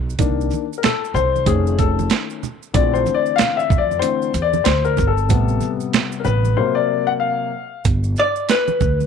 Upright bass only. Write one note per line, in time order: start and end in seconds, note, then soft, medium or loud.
0.00 0.16 B1 medium
0.19 0.48 C2 medium
1.14 1.44 C2 medium
1.46 2.07 F1 loud
2.74 3.03 A#1 loud
3.70 3.99 F2 loud
4.34 4.63 E2 medium
4.66 4.95 D2 medium
4.99 5.30 G1 medium
5.30 5.59 A1 loud
6.26 6.55 A1 medium
7.85 8.14 G1 loud
8.81 9.07 D2 medium